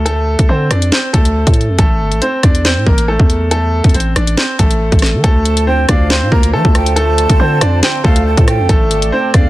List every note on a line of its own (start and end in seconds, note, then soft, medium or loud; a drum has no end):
0.00 0.36 D2 loud
0.06 0.47 A3 medium
0.06 0.46 A4 loud
0.06 closed hi-hat medium
0.39 0.48 D2 loud
0.39 kick loud
0.39 closed hi-hat medium
0.49 0.70 D3 loud
0.49 0.67 C4 medium
0.49 0.66 C5 medium
0.71 0.91 F2 loud
0.71 0.89 D4 medium
0.71 0.88 D5 medium
0.71 cross-stick loud
0.71 closed hi-hat medium
0.82 closed hi-hat medium
0.92 1.10 C4 medium
0.92 1.10 C5 medium
0.92 snare loud
1.13 1.46 D2 loud
1.13 1.75 A3 medium
1.13 1.74 A4 medium
1.13 kick medium
1.13 closed hi-hat medium
1.25 closed hi-hat medium
1.47 1.70 A2 loud
1.47 kick loud
1.47 closed hi-hat medium
1.54 closed hi-hat medium
1.61 closed hi-hat soft
1.68 1.78 F2 loud
1.79 2.02 A1 loud
1.79 2.20 A3 medium
1.79 2.19 A4 medium
1.79 kick loud
1.79 closed hi-hat medium
2.00 2.13 G1 loud
2.12 2.21 A1 loud
2.12 closed hi-hat soft
2.22 2.40 C4 medium
2.22 2.39 C5 medium
2.22 closed hi-hat medium
2.43 2.78 E2 loud
2.43 2.61 D4 medium
2.43 2.61 D5 medium
2.43 kick medium
2.43 cross-stick loud
2.43 closed hi-hat medium
2.55 closed hi-hat medium
2.65 2.83 C4 medium
2.65 2.83 C5 medium
2.65 snare loud
2.76 2.86 A2 loud
2.86 3.18 A1 loud
2.86 3.04 A#3 medium
2.86 3.04 A#4 medium
2.86 kick medium
2.98 closed hi-hat medium
3.08 3.49 A3 medium
3.08 3.49 A4 medium
3.20 3.82 E2 loud
3.20 kick loud
3.30 closed hi-hat medium
3.51 3.92 A3 medium
3.51 3.92 A4 loud
3.51 closed hi-hat medium
3.84 3.94 E2 loud
3.84 kick loud
3.84 closed hi-hat soft
3.89 closed hi-hat medium
3.94 4.15 A1 loud
3.94 4.13 C4 medium
3.94 4.12 C5 medium
3.94 closed hi-hat medium
4.00 closed hi-hat medium
4.16 4.37 A1 loud
4.16 4.34 D4 medium
4.16 4.33 D5 medium
4.16 cross-stick loud
4.16 closed hi-hat medium
4.27 closed hi-hat medium
4.38 4.55 C4 medium
4.38 4.55 C5 medium
4.38 snare loud
4.59 4.91 A1 loud
4.59 5.20 A3 medium
4.59 5.20 A4 medium
4.59 kick medium
4.59 closed hi-hat medium
4.71 closed hi-hat medium
4.92 5.15 A1 loud
4.92 kick loud
4.92 closed hi-hat soft
4.99 cross-stick medium
4.99 snare medium
4.99 closed hi-hat medium
4.99 open hi-hat medium
5.06 closed hi-hat medium
5.14 5.23 E3 loud
5.24 5.86 D2 loud
5.24 8.66 D3 medium
5.24 5.65 A3 medium
5.24 8.66 D4 medium
5.24 8.66 F4 medium
5.24 5.64 A4 loud
5.24 8.66 C5 medium
5.24 kick loud
5.24 closed hi-hat medium
5.45 5.66 A5 medium
5.45 closed hi-hat medium
5.57 closed hi-hat medium
5.67 5.85 C4 medium
5.67 5.85 C5 medium
5.67 5.88 G5 medium
5.89 6.23 D2 loud
5.89 6.07 D4 medium
5.89 6.06 D5 medium
5.89 6.29 F5 medium
5.89 kick medium
5.89 cross-stick loud
5.89 closed hi-hat medium
6.10 6.28 C4 medium
6.10 6.28 C5 medium
6.10 snare loud
6.22 6.31 A2 loud
6.32 6.55 D2 loud
6.32 6.50 A#3 medium
6.32 6.49 A#4 medium
6.32 6.52 A#5 medium
6.32 kick medium
6.43 closed hi-hat medium
6.53 6.64 F3 loud
6.53 6.94 A3 medium
6.53 6.94 A4 medium
6.53 6.74 A5 medium
6.65 7.27 D2 loud
6.65 kick loud
6.75 6.95 G5 medium
6.75 cross-stick loud
6.75 closed hi-hat medium
6.86 closed hi-hat medium
6.96 7.37 A3 medium
6.96 7.37 A4 loud
6.96 7.79 A5 loud
6.96 closed hi-hat medium
7.18 closed hi-hat medium
7.30 7.39 D2 loud
7.30 kick loud
7.30 closed hi-hat medium
7.39 7.60 D3 loud
7.39 7.58 C4 medium
7.39 7.57 C5 medium
7.61 7.82 F2 loud
7.61 7.79 D4 medium
7.61 7.79 D5 medium
7.61 cross-stick loud
7.61 closed hi-hat medium
7.83 8.01 C4 medium
7.83 8.00 C5 medium
7.83 8.03 G5 medium
7.83 snare loud
7.83 closed hi-hat medium
8.04 8.36 D2 loud
8.04 8.66 A3 medium
8.04 8.65 A4 medium
8.04 8.25 F5 medium
8.04 kick loud
8.16 closed hi-hat medium
8.26 8.47 A5 medium
8.37 8.61 A2 loud
8.37 kick loud
8.37 closed hi-hat medium
8.47 8.68 G5 medium
8.47 cross-stick loud
8.47 closed hi-hat medium
8.59 8.69 F2 loud
8.69 8.92 A1 loud
8.69 9.49 A3 medium
8.69 9.10 A3 medium
8.69 9.10 A4 loud
8.69 9.49 A4 medium
8.69 9.49 D5 medium
8.69 kick loud
8.69 closed hi-hat medium
8.91 9.04 G1 loud
8.91 9.11 A5 medium
8.91 closed hi-hat medium
9.02 9.12 A1 loud
9.02 closed hi-hat medium
9.12 9.30 C4 medium
9.12 9.30 C5 medium
9.12 9.33 G5 medium
9.34 9.49 E2 loud
9.34 9.49 D4 medium
9.34 9.49 D5 medium
9.34 9.49 F5 medium
9.34 kick medium
9.34 cross-stick loud
9.34 closed hi-hat medium